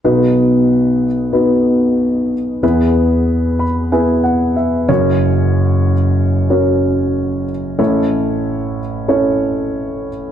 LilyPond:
<<
  \new Staff \with { instrumentName = "Upright piano" } { \time 4/4 \key b \major \tempo 4 = 93 << { r1 | r4. b''8 gis''8 fis''8 e''8 cis''8 | r1 | r1 | } \\ { <b dis' fis' b'>4. r8 <b dis' fis' b'>4. r8 | <b e' gis' b'>4. r8 <b e' gis' b'>4. <cis' fis' ais'>8~ | <cis' fis' ais'>4 r4 <cis' fis' ais' cis''>4. r8 | <cis' e' a' cis''>4. r8 <cis' e' a' cis''>4. r8 | } >> }
  \new Staff \with { instrumentName = "Upright piano" } { \clef bass \time 4/4 \key b \major <b,, b,>1 | <e, e>2.~ <e, e>8 <fis,, fis,>8~ | <fis,, fis,>2.~ <fis,, fis,>8 r8 | <a,, a,>1 | }
>>